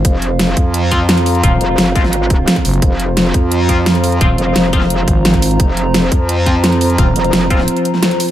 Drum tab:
HH |x-x-x-x-x-x-xxox|x-x-x-x-x-x-xxox|x-x-x-x-x-x-xxox|x-x-x-x-x-x-xxo-|
SD |----o-------o---|----o--o----o---|----o-------o---|----o--o----o---|
BD |o-----o---o-----|o-----o---o--o--|o-----o---o-----|o-----o---o--o--|

HH |x-x-x-x-x-x-xxox|x-xxx-x-xxx-xxo-|
SD |----o-------o---|----o--o---oo---|
BD |o-----o---o-----|o-----o---------|